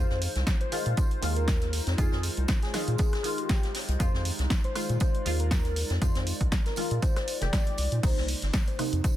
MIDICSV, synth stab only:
0, 0, Header, 1, 2, 480
1, 0, Start_track
1, 0, Tempo, 504202
1, 1888, Time_signature, 4, 2, 24, 8
1, 8725, End_track
2, 0, Start_track
2, 0, Title_t, "Synth stab"
2, 0, Program_c, 0, 62
2, 0, Note_on_c, 0, 51, 72
2, 0, Note_on_c, 0, 56, 71
2, 0, Note_on_c, 0, 65, 85
2, 657, Note_off_c, 0, 51, 0
2, 661, Note_off_c, 0, 56, 0
2, 666, Note_off_c, 0, 65, 0
2, 683, Note_on_c, 0, 51, 96
2, 687, Note_on_c, 0, 56, 94
2, 691, Note_on_c, 0, 65, 106
2, 1139, Note_off_c, 0, 51, 0
2, 1141, Note_off_c, 0, 56, 0
2, 1143, Note_off_c, 0, 65, 0
2, 1158, Note_on_c, 0, 51, 95
2, 1167, Note_on_c, 0, 56, 91
2, 1176, Note_on_c, 0, 65, 104
2, 1857, Note_off_c, 0, 51, 0
2, 1861, Note_off_c, 0, 56, 0
2, 1866, Note_off_c, 0, 65, 0
2, 1878, Note_on_c, 0, 51, 76
2, 1886, Note_on_c, 0, 56, 69
2, 1895, Note_on_c, 0, 65, 84
2, 2577, Note_off_c, 0, 51, 0
2, 2581, Note_off_c, 0, 56, 0
2, 2585, Note_off_c, 0, 65, 0
2, 2603, Note_on_c, 0, 51, 99
2, 2607, Note_on_c, 0, 56, 90
2, 2612, Note_on_c, 0, 65, 103
2, 3059, Note_off_c, 0, 51, 0
2, 3061, Note_off_c, 0, 56, 0
2, 3064, Note_off_c, 0, 65, 0
2, 3078, Note_on_c, 0, 51, 96
2, 3088, Note_on_c, 0, 56, 88
2, 3096, Note_on_c, 0, 65, 110
2, 3777, Note_off_c, 0, 51, 0
2, 3782, Note_off_c, 0, 56, 0
2, 3786, Note_off_c, 0, 65, 0
2, 3798, Note_on_c, 0, 51, 77
2, 3807, Note_on_c, 0, 56, 67
2, 3816, Note_on_c, 0, 65, 80
2, 4497, Note_off_c, 0, 51, 0
2, 4501, Note_off_c, 0, 56, 0
2, 4506, Note_off_c, 0, 65, 0
2, 4523, Note_on_c, 0, 51, 97
2, 4527, Note_on_c, 0, 56, 86
2, 4531, Note_on_c, 0, 65, 106
2, 4979, Note_off_c, 0, 51, 0
2, 4981, Note_off_c, 0, 56, 0
2, 4983, Note_off_c, 0, 65, 0
2, 5000, Note_on_c, 0, 51, 101
2, 5008, Note_on_c, 0, 56, 85
2, 5017, Note_on_c, 0, 65, 110
2, 5698, Note_off_c, 0, 51, 0
2, 5702, Note_off_c, 0, 56, 0
2, 5706, Note_off_c, 0, 65, 0
2, 5718, Note_on_c, 0, 51, 76
2, 5727, Note_on_c, 0, 56, 68
2, 5735, Note_on_c, 0, 65, 81
2, 6416, Note_off_c, 0, 51, 0
2, 6421, Note_off_c, 0, 56, 0
2, 6425, Note_off_c, 0, 65, 0
2, 6443, Note_on_c, 0, 51, 101
2, 6447, Note_on_c, 0, 56, 86
2, 6451, Note_on_c, 0, 65, 103
2, 6899, Note_off_c, 0, 51, 0
2, 6901, Note_off_c, 0, 56, 0
2, 6903, Note_off_c, 0, 65, 0
2, 7051, Note_on_c, 0, 51, 75
2, 7060, Note_on_c, 0, 56, 72
2, 7068, Note_on_c, 0, 67, 86
2, 7617, Note_off_c, 0, 51, 0
2, 7622, Note_off_c, 0, 56, 0
2, 7626, Note_off_c, 0, 67, 0
2, 7639, Note_on_c, 0, 48, 73
2, 7648, Note_on_c, 0, 58, 67
2, 7656, Note_on_c, 0, 63, 82
2, 8337, Note_off_c, 0, 48, 0
2, 8342, Note_off_c, 0, 58, 0
2, 8346, Note_off_c, 0, 63, 0
2, 8363, Note_on_c, 0, 48, 97
2, 8368, Note_on_c, 0, 58, 91
2, 8372, Note_on_c, 0, 63, 109
2, 8725, Note_off_c, 0, 48, 0
2, 8725, Note_off_c, 0, 58, 0
2, 8725, Note_off_c, 0, 63, 0
2, 8725, End_track
0, 0, End_of_file